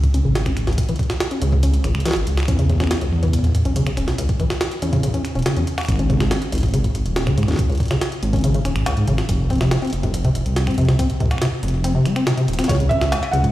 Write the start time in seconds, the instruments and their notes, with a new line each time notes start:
0.03 kick, closed hi-hat
0.14 detuned saw bass C#2, acid bass C#4, closed hi-hat
0.25 detuned saw bass G#1, acid bass C#3
0.35 acid bass C#3, snare, closed hi-hat
0.46 acid bass C#4, finger snap, kick, closed hi-hat
0.57 detuned saw bass G#1, finger snap, closed hi-hat
0.67 detuned saw bass G#1, acid bass C#2, snare, closed hi-hat
0.73 closed hi-hat
0.78 kick, closed hi-hat
0.83 closed hi-hat
0.89 acid bass E3, closed hi-hat
0.96 kick, closed hi-hat
0.99 closed hi-hat
1.03 closed hi-hat
1.10 finger snap, snare, closed hi-hat
1.20 snare, closed hi-hat
1.31 acid bass C#4, closed hi-hat
1.42 detuned saw bass C#2, acid bass C#3, closed hi-hat
1.52 acid bass C#3, kick
1.63 acid bass C#4, closed hi-hat
1.74 closed hi-hat
1.84 detuned saw bass G#1, acid bass C#2, finger snap, closed hi-hat
1.95 detuned saw bass C#2, finger snap
2.00 closed hi-hat
2.06 acid bass E3, snare, closed hi-hat
2.08 snare
2.11 snare
2.13 detuned saw bass G#1, snare, closed hi-hat
2.27 detuned saw bass C#2, closed hi-hat
2.37 finger snap, snare, closed hi-hat
2.40 finger snap
2.43 finger snap
2.46 detuned saw bass E2, acid bass C#4, finger snap, kick, closed hi-hat
2.59 acid bass C#3, closed hi-hat
2.69 acid bass C#3, kick, closed hi-hat
2.80 acid bass C#4, finger snap, snare, closed hi-hat
2.84 finger snap
2.87 finger snap
2.91 finger snap, snare, closed hi-hat
2.94 finger snap
2.98 acid bass C#2, finger snap, closed hi-hat
3.12 detuned saw bass E2
3.23 acid bass E3, kick, closed hi-hat
3.28 kick
3.33 kick, closed hi-hat
3.39 kick
3.44 kick, closed hi-hat
3.47 kick
3.49 kick
3.52 kick
3.55 detuned saw bass E2, kick, closed hi-hat
3.57 kick
3.60 kick
3.63 detuned saw bass B1, acid bass C#4, kick, closed hi-hat
3.76 acid bass C#3, closed hi-hat
3.87 acid bass C#3, finger snap, closed hi-hat
3.97 detuned saw bass E1, acid bass C#4, finger snap, closed hi-hat
4.08 detuned saw bass B1, snare, closed hi-hat
4.18 acid bass C#2, closed hi-hat
4.29 kick, closed hi-hat
4.40 acid bass E3, kick, closed hi-hat
4.50 finger snap, snare, closed hi-hat
4.61 snare, closed hi-hat
4.72 closed hi-hat
4.82 detuned saw bass E2, acid bass C#4, closed hi-hat
4.93 acid bass C#3, kick, closed hi-hat
4.96 kick
5.00 acid bass C#3, kick, closed hi-hat
5.03 kick
5.07 kick
5.11 acid bass C#4, kick, closed hi-hat
5.25 finger snap, closed hi-hat
5.35 detuned saw bass E1, acid bass C#4, closed hi-hat
5.39 closed hi-hat
5.42 snare, closed hi-hat
5.46 acid bass C#3, closed hi-hat
5.57 detuned saw bass E2, acid bass C#4, closed hi-hat
5.67 closed hi-hat
5.78 finger snap, snare, closed hi-hat
5.81 finger snap, closed hi-hat
5.83 finger snap, closed hi-hat
5.86 finger snap, closed hi-hat
5.88 detuned saw bass G#1, finger snap, kick, closed hi-hat
5.96 acid bass C#4, finger snap, closed hi-hat
6.10 acid bass C#3, kick, closed hi-hat
6.20 acid bass C#3, finger snap, snare, closed hi-hat
6.31 acid bass C#4, snare, closed hi-hat
6.42 closed hi-hat
6.52 detuned saw bass G#1, acid bass C#2, closed hi-hat
6.55 closed hi-hat
6.58 closed hi-hat
6.60 kick, closed hi-hat
6.63 closed hi-hat
6.66 closed hi-hat
6.68 closed hi-hat
6.71 closed hi-hat
6.74 acid bass C#3, closed hi-hat
6.84 kick, closed hi-hat
6.95 detuned saw bass G#1, closed hi-hat
7.06 detuned saw bass D#1, closed hi-hat
7.16 acid bass C#4, snare, closed hi-hat
7.27 acid bass C#3, finger snap, kick, closed hi-hat
7.38 detuned saw bass G#2, acid bass C#3, closed hi-hat
7.43 finger snap
7.48 detuned saw bass D#2, acid bass C#4, snare, closed hi-hat
7.51 snare
7.54 snare
7.56 kick, snare, closed hi-hat
7.69 acid bass C#2, closed hi-hat
7.72 closed hi-hat
7.75 closed hi-hat
7.78 kick, closed hi-hat
7.80 closed hi-hat
7.83 closed hi-hat
7.86 closed hi-hat
7.88 acid bass C#3, finger snap, snare, closed hi-hat
7.91 closed hi-hat
8.01 snare, closed hi-hat
8.12 closed hi-hat
8.23 detuned saw bass G#1, closed hi-hat
8.33 acid bass C#4, kick, closed hi-hat
8.36 closed hi-hat
8.39 closed hi-hat
8.41 acid bass C#3, closed hi-hat
8.44 closed hi-hat
8.54 acid bass C#3, closed hi-hat
8.65 detuned saw bass D#1, acid bass C#4, finger snap, closed hi-hat
8.76 detuned saw bass G#1, finger snap, closed hi-hat
8.86 acid bass C#2, snare, closed hi-hat
8.97 detuned saw bass G#2, closed hi-hat
9.07 detuned saw bass G#1, acid bass C#3, closed hi-hat
9.18 finger snap, snare, closed hi-hat
9.29 detuned saw bass F1, kick, closed hi-hat
9.50 acid bass C4, kick, closed hi-hat
9.53 closed hi-hat
9.55 closed hi-hat
9.58 acid bass C3, finger snap, snare, closed hi-hat
9.61 closed hi-hat
9.63 closed hi-hat
9.66 closed hi-hat
9.69 snare, closed hi-hat
9.71 acid bass C3, closed hi-hat
9.82 acid bass C4, closed hi-hat
9.85 closed hi-hat
9.87 closed hi-hat
9.90 closed hi-hat
9.93 detuned saw bass F1, closed hi-hat
10.03 acid bass C2, kick, closed hi-hat
10.14 closed hi-hat
10.25 acid bass C3, kick, closed hi-hat
10.35 detuned saw bass F1, closed hi-hat
10.46 detuned saw bass C2, closed hi-hat
10.56 snare, closed hi-hat
10.67 acid bass C4, finger snap, kick, closed hi-hat
10.71 closed hi-hat
10.74 acid bass C3, closed hi-hat
10.78 detuned saw bass F2, closed hi-hat
10.81 closed hi-hat
10.85 detuned saw bass C2, acid bass C3, finger snap, snare, closed hi-hat
10.89 closed hi-hat
10.99 acid bass C4, kick, closed hi-hat
11.10 closed hi-hat
11.20 acid bass C2, kick, closed hi-hat
11.26 kick
11.31 finger snap, kick, snare, closed hi-hat
11.36 finger snap, kick
11.42 acid bass C3, finger snap, snare, closed hi-hat
11.63 detuned saw bass F1, closed hi-hat
11.68 closed hi-hat
11.84 acid bass C4, closed hi-hat
11.95 acid bass C3
12.05 acid bass G#3, finger snap, closed hi-hat
12.16 acid bass C4, finger snap, closed hi-hat
12.27 acid bass C3, snare, closed hi-hat
12.37 acid bass C3, closed hi-hat
12.48 detuned saw bass D#1, closed hi-hat
12.53 closed hi-hat
12.59 acid bass C4, finger snap, snare, closed hi-hat
12.64 felt piano C#5, snare, closed hi-hat
12.69 detuned saw bass C#2, acid bass C#3, kick, snare, closed hi-hat
12.75 snare
12.80 acid bass C#3, closed hi-hat
12.89 acid bass C#4, felt piano E5, kick, closed hi-hat
13.01 finger snap, snare, closed hi-hat
13.12 acid bass C#2, snare, closed hi-hat
13.23 closed hi-hat, cowbell
13.31 detuned saw bass C#2, acid bass C#3, felt piano F#5, closed hi-hat
13.44 kick, closed hi-hat